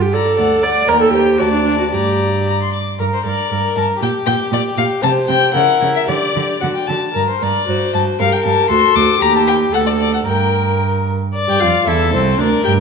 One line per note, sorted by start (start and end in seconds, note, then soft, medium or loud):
0.00 0.29 G2 medium
0.00 0.15 G4 medium
0.13 0.65 A4 medium
0.13 0.36 D5 soft
0.13 0.38 A#5 soft
0.37 0.80 D2 medium
0.37 0.61 D5 soft
0.37 0.63 F#5 soft
0.62 0.87 D5 soft
0.62 0.90 D5 medium
0.62 0.88 F#5 soft
0.88 1.41 D#2 medium
0.88 1.15 A#4 soft
0.88 1.00 A#4 medium
0.88 1.43 G5 soft
1.01 1.12 A4 medium
1.13 1.40 G4 medium
1.13 1.41 C5 soft
1.38 1.94 D2 soft
1.38 1.52 F#4 medium
1.38 1.92 D5 soft
1.38 1.95 A5 soft
1.53 1.63 D4 soft
1.64 1.78 D4 soft
1.79 1.84 F#4 soft
1.91 2.79 G2 soft
1.91 2.44 G4 soft
1.91 2.77 D5 soft
1.91 2.41 A#5 soft
2.47 2.59 A#5 soft
2.62 2.73 C6 soft
2.74 2.99 D6 soft
2.99 3.08 G2 soft
2.99 3.04 A#4 medium
2.99 3.25 A#4 soft
3.14 3.24 C5 soft
3.25 3.33 G2 soft
3.25 3.50 A#4 soft
3.25 3.75 D5 medium
3.51 3.59 G2 soft
3.51 3.75 A#4 soft
3.51 3.98 A#4 soft
3.76 3.84 G2 soft
3.76 4.01 A#4 soft
3.76 3.85 A5 medium
4.00 4.09 A#2 soft
4.00 5.04 G4 soft
4.00 4.26 G4 soft
4.00 4.10 G5 medium
4.26 4.35 A#2 soft
4.26 4.52 G4 soft
4.26 4.34 G5 medium
4.52 4.60 A#2 soft
4.52 4.76 G4 soft
4.52 4.61 D5 medium
4.77 4.85 A#2 soft
4.77 5.02 G4 soft
4.77 4.86 F5 medium
5.02 5.11 C3 medium
5.02 5.27 G4 soft
5.02 5.54 C5 medium
5.02 5.11 A5 medium
5.27 5.37 C3 soft
5.27 5.53 G4 soft
5.27 5.53 G5 medium
5.54 5.63 C#3 soft
5.54 5.79 E4 soft
5.54 6.10 A#4 soft
5.54 5.93 F#5 medium
5.80 5.90 C#3 soft
5.80 6.07 E4 soft
5.96 6.01 E5 medium
6.07 6.16 D3 soft
6.07 6.34 G4 soft
6.07 6.86 D5 medium
6.07 6.56 D5 soft
6.35 6.44 D3 soft
6.35 6.61 G4 soft
6.61 6.71 D3 soft
6.61 6.87 F#4 soft
6.61 6.66 F#5 soft
6.75 6.89 G5 soft
6.87 6.97 D3 soft
6.87 7.13 F#4 soft
6.87 7.14 A5 soft
7.14 7.23 G2 soft
7.14 7.40 A#4 soft
7.14 7.27 A#4 medium
7.30 7.44 C5 soft
7.41 7.50 G2 soft
7.41 7.66 A#4 soft
7.41 7.93 D5 medium
7.67 7.76 G2 soft
7.67 7.93 F#4 soft
7.67 8.21 C5 medium
7.93 8.02 G2 soft
7.93 8.19 F#4 soft
7.93 8.02 A5 medium
8.19 8.28 G2 medium
8.19 8.45 G4 soft
8.19 8.70 A#4 medium
8.19 8.34 F5 medium
8.32 8.44 G5 medium
8.45 8.53 G2 medium
8.45 8.70 G4 soft
8.45 8.69 A5 medium
8.69 8.78 D2 soft
8.69 8.94 F#4 medium
8.69 9.20 A4 medium
8.69 8.97 C6 medium
8.95 9.04 D2 medium
8.95 9.19 F#4 soft
8.95 9.23 D6 medium
9.20 9.69 D#2 medium
9.20 9.74 G4 soft
9.20 9.75 G4 medium
9.20 9.34 A#5 medium
9.36 9.41 A5 medium
9.47 9.55 G5 medium
9.72 10.25 D2 medium
9.72 10.26 A4 soft
9.72 10.25 A4 soft
9.72 9.79 F#5 medium
9.86 9.92 D5 medium
10.00 10.13 D5 medium
10.13 10.18 F#5 soft
10.25 11.12 G2 soft
10.25 11.13 A#4 soft
10.25 11.06 A#4 soft
10.25 10.79 G5 medium
11.35 11.84 D5 medium
11.47 11.60 G2 medium
11.47 11.62 G4 medium
11.47 11.61 G5 medium
11.60 11.69 F2 soft
11.60 11.89 F4 soft
11.60 11.88 F5 medium
11.86 12.15 E2 medium
11.86 12.12 E4 medium
11.86 12.38 A4 soft
11.86 12.13 E5 medium
12.13 12.38 C2 medium
12.13 12.40 C4 medium
12.13 12.41 C5 medium
12.38 12.47 D2 medium
12.38 12.63 D4 medium
12.38 12.80 A#4 medium
12.38 12.64 D5 medium
12.64 12.80 G2 medium
12.64 12.72 G4 medium
12.64 12.72 G5 medium